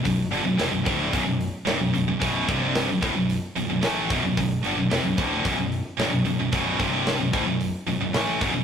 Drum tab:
HH |oooooooo|oooooooo|oooooooo|oooooooo|
SD |--o---o-|--o---o-|--o---o-|--o---o-|
BD |o--oo---|oo-o---o|o--oo---|oo-o---o|